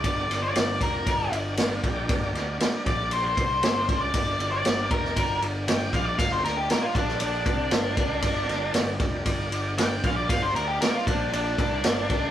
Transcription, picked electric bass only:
X:1
M:4/4
L:1/8
Q:1/4=117
K:Gm
V:1 name="Picked electric bass" clef=bass
G,,, G,,, G,,, F,,, G,,, G,,,2 B,,, | G,,, D,, z B,,,2 C,, G,,, ^C,, | G,,, G,,, G,,, F,,, G,,, G,,,2 B,,, | G,,, D,, z B,,,2 C,, G,,, ^C,, |
G,,, G,,, G,,, F,,, G,,, G,,,2 B,,, | G,,, D,, z B,,,2 C,, G,,, ^C,, |]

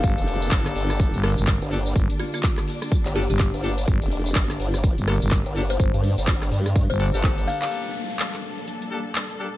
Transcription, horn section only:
X:1
M:4/4
L:1/16
Q:"Swing 16ths" 1/4=125
K:Gm
V:1 name="Horn section"
[B,DGA]8- [B,DGA]2 [B,DGA] z3 [B,DGA] z | z8 z2 [B,DGA] z3 [B,DGA] z | z8 z2 [B,DGA] z3 [B,DGA] z | z8 z2 [B,DGA] [B,DGA]4 [B,DGA]- |
[B,DGA]2 z8 [B,DGA] z3 [B,DGA] z |]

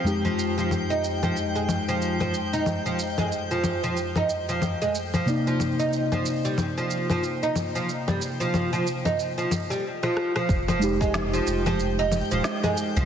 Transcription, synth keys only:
X:1
M:4/4
L:1/8
Q:"Swing 16ths" 1/4=92
K:Fdor
V:1 name="Synth keys"
[F,,A,EG]8- | [F,,A,EG]8 | [C,B,Ed]8- | [C,B,Ed]6 z2 |
z [A,EG]6- [A,EG] |]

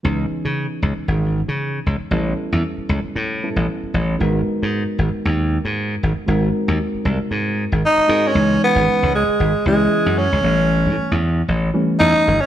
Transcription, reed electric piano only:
X:1
M:4/4
L:1/8
Q:"Swing 16ths" 1/4=115
K:G#m
V:1 name="Reed electric piano"
[E,B,CDG]8 | [=G,B,CE=A]4- [G,B,CEA] [G,B,CEA]3 | [G,B,DFA]8 | [G,^B,DFA]6- [G,B,DFA] [G,B,DFA] |
[E,G,B,CD]3 z2 [E,G,B,CE]2 z | [E,=G,=A,B,C]3 z2 [E,G,A,B,C]2 z |]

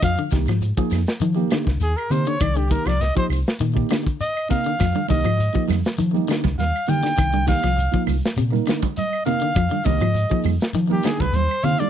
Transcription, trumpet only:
X:1
M:4/4
L:1/16
Q:1/4=101
K:Fdor
V:1 name="Trumpet"
f2 z8 z2 A B c _d | d G B d e c z6 e2 f2- | f2 e4 z6 f2 g2- | g2 f4 z6 e2 f2- |
f2 e4 z3 G A =B c2 f d |]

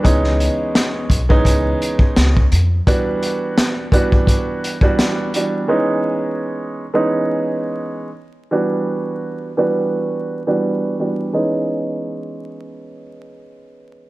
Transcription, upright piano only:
X:1
M:4/4
L:1/16
Q:"Swing 16ths" 1/4=85
K:C#m
V:1 name="Upright piano"
[E,G,B,CD]6 z [E,G,B,CD]6 z3 | [E,=G,B,=DF]6 [E,G,B,DF]4- [E,G,B,DF] [E,G,B,DF]3 [E,G,B,DF]2 | [E,G,B,CD]6 z [E,G,B,CD]6 z3 | [E,=G,B,=DF]6 [E,G,B,DF]4- [E,G,B,DF] [E,G,B,DF]3 [E,G,B,DF]2 |
[E,G,B,CD]16 |]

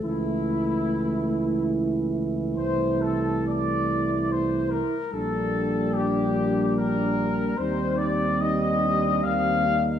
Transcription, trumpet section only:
X:1
M:3/4
L:1/8
Q:1/4=72
K:Aphr
V:1 name="Trumpet section"
E4 z2 | c A d2 c B | A2 G2 B2 | [K:Cdor] c d e2 f2 |]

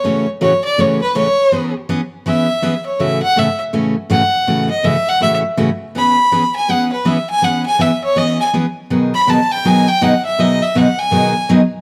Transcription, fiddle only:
X:1
M:4/4
L:1/8
Q:"Swing" 1/4=162
K:E
V:1 name="Fiddle"
c z c =d c B c2- | c z3 e3 c | e f e z3 f2- | f d e f e z3 |
b3 g f B e g | f g e c d g z2 | z b a =g ^g =g f e | d e f g3 z2 |]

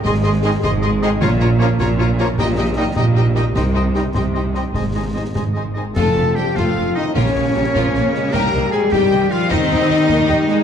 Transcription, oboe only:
X:1
M:6/8
L:1/8
Q:3/8=102
K:Bbdor
V:1 name="Oboe"
e e e e e e | d d d d d d | e e e e e e | e e e e e e |
e e e e e e | =A2 G F2 E | D6 | B2 A G2 F |
E6 |]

